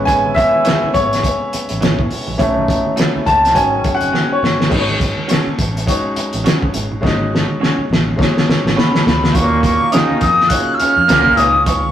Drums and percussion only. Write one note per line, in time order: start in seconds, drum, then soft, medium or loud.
0.07 kick loud
0.07 closed hi-hat loud
0.07 muted conga soft
0.26 high conga medium
0.36 kick loud
0.36 closed hi-hat medium
0.36 muted conga soft
0.55 high conga medium
0.65 snare loud
0.65 closed hi-hat medium
0.94 kick medium
0.94 closed hi-hat medium
0.94 muted conga soft
0.94 low conga medium
1.13 snare soft
1.13 closed hi-hat medium
1.23 kick loud
1.23 closed hi-hat loud
1.23 muted conga soft
1.52 closed hi-hat medium
1.52 muted conga soft
1.69 closed hi-hat medium
1.81 snare loud
1.81 closed hi-hat medium
1.81 muted conga soft
1.81 high conga medium
1.99 kick medium
2.11 open hi-hat medium
2.11 low conga medium
2.27 high conga medium
2.27 low conga medium
2.39 kick loud
2.39 closed hi-hat medium
2.57 high conga medium
2.68 kick loud
2.68 closed hi-hat medium
2.86 high conga medium
2.97 snare loud
2.97 closed hi-hat medium
2.97 muted conga soft
3.25 kick medium
3.25 closed hi-hat medium
3.25 low conga medium
3.45 snare soft
3.45 closed hi-hat medium
3.55 kick medium
3.55 closed hi-hat loud
3.55 muted conga soft
3.84 kick loud
3.84 closed hi-hat medium
3.84 muted conga soft
4.01 closed hi-hat soft
4.13 snare medium
4.13 muted conga soft
4.13 high conga medium
4.43 snare medium
4.43 low conga medium
4.59 snare medium
4.59 high conga soft
4.59 low conga medium
4.71 kick loud
4.71 crash medium
4.88 high conga medium
5.00 kick loud
5.00 closed hi-hat medium
5.17 high conga medium
5.29 snare loud
5.29 closed hi-hat medium
5.29 muted conga soft
5.59 kick medium
5.59 closed hi-hat medium
5.77 closed hi-hat medium
5.88 kick loud
5.88 closed hi-hat loud
6.16 closed hi-hat medium
6.33 closed hi-hat medium
6.45 snare loud
6.45 closed hi-hat medium
6.45 muted conga soft
6.45 high conga medium
6.62 kick medium
6.74 closed hi-hat medium
6.74 muted conga soft
6.74 low conga medium
6.91 low conga medium
7.03 kick loud
7.03 snare medium
7.03 muted conga soft
7.20 high conga medium
7.33 snare medium
7.33 muted conga soft
7.49 high conga medium
7.61 snare medium
7.61 muted conga soft
7.89 snare medium
7.89 muted conga soft
8.18 kick loud
8.18 snare loud
8.18 muted conga soft
8.37 snare medium
8.47 snare medium
8.47 muted conga soft
8.67 snare medium
8.77 snare loud
8.77 muted conga soft
8.77 high conga medium
8.95 snare medium
9.06 snare loud
9.06 muted conga soft
9.06 low conga medium
9.23 snare medium
9.23 low conga medium
9.35 kick loud
9.35 closed hi-hat medium
9.52 high conga medium
9.63 kick medium
9.63 closed hi-hat medium
9.63 muted conga soft
9.81 high conga medium
9.92 snare loud
9.92 closed hi-hat medium
9.92 muted conga soft
10.21 kick medium
10.21 closed hi-hat medium
10.21 low conga medium
10.40 snare soft
10.50 kick loud
10.50 closed hi-hat loud
10.79 closed hi-hat medium
10.79 muted conga soft
11.08 snare loud
11.08 closed hi-hat medium
11.08 muted conga soft
11.08 high conga medium
11.26 kick medium
11.37 closed hi-hat medium
11.37 muted conga soft
11.37 low conga medium
11.55 low conga medium
11.66 kick loud
11.66 closed hi-hat medium
11.84 high conga medium